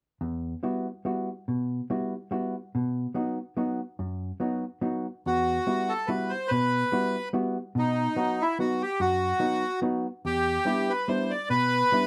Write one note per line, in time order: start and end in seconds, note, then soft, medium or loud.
0.21 0.53 E2 medium
0.63 0.86 G3 soft
0.63 0.86 B3 soft
0.63 0.87 E4 soft
0.63 0.87 F#4 soft
1.05 1.28 G3 soft
1.05 1.28 B3 soft
1.05 1.29 E4 soft
1.05 1.29 F#4 medium
1.48 1.80 B2 soft
1.90 2.13 G3 medium
1.90 2.13 B3 soft
1.90 2.13 E4 soft
1.90 2.13 F#4 medium
2.31 2.54 G3 soft
2.31 2.55 B3 soft
2.31 2.55 E4 soft
2.31 2.54 F#4 medium
2.75 3.06 B2 medium
3.14 3.37 F#3 soft
3.14 3.38 B3 soft
3.14 3.38 D#4 soft
3.14 3.38 F#4 medium
3.57 3.79 F#3 medium
3.57 3.80 B3 soft
3.57 3.80 D#4 soft
3.57 3.80 F#4 soft
3.99 4.31 F#2 medium
4.40 4.63 F#3 soft
4.40 4.63 B3 soft
4.40 4.64 D#4 soft
4.40 4.64 F#4 soft
4.81 5.06 F#3 soft
4.81 5.06 B3 soft
4.81 5.06 D#4 soft
4.81 5.06 F#4 soft
5.26 5.58 E2 medium
5.26 5.93 F#4 medium
5.67 5.90 G3 soft
5.67 5.90 B3 soft
5.67 5.91 E4 soft
5.67 5.91 F#4 medium
5.89 6.10 A4 medium
6.07 6.32 G3 soft
6.07 6.32 B3 soft
6.07 6.32 E4 soft
6.07 6.32 F#4 medium
6.07 6.32 B4 medium
6.29 6.51 C5 medium
6.48 6.83 B2 medium
6.48 7.29 B4 medium
6.92 7.15 G3 soft
6.92 7.15 B3 medium
6.92 7.16 E4 soft
6.92 7.16 F#4 medium
7.33 7.56 G3 soft
7.33 7.57 B3 soft
7.33 7.57 E4 soft
7.33 7.57 F#4 medium
7.75 8.07 B2 medium
7.75 8.43 D#4 medium
8.16 8.39 F#3 soft
8.16 8.39 B3 soft
8.16 8.40 D#4 soft
8.16 8.40 F#4 medium
8.41 8.58 E4 medium
8.59 8.81 F#3 soft
8.59 8.81 B3 soft
8.59 8.82 D#4 soft
8.59 8.82 F#4 medium
8.82 9.01 G4 medium
9.00 9.32 F#2 medium
9.00 9.80 F#4 medium
9.39 9.64 F#3 soft
9.39 9.64 B3 soft
9.39 9.64 D#4 medium
9.39 9.64 F#4 medium
9.82 10.06 F#3 medium
9.82 10.06 B3 medium
9.82 10.06 D#4 medium
9.82 10.06 F#4 medium
10.25 10.57 E2 medium
10.25 10.92 G4 medium
10.65 10.89 G3 medium
10.65 10.89 B3 soft
10.65 10.90 D4 soft
10.65 10.90 E4 medium
10.89 11.10 B4 medium
11.08 11.31 G3 soft
11.08 11.32 B3 soft
11.08 11.32 D4 soft
11.08 11.32 E4 soft
11.08 11.32 C5 medium
11.30 11.49 D5 medium
11.49 11.82 B2 medium
11.49 12.07 B4 loud
11.92 12.07 G3 soft
11.92 12.07 B3 soft
11.92 12.07 D4 soft
11.92 12.07 E4 medium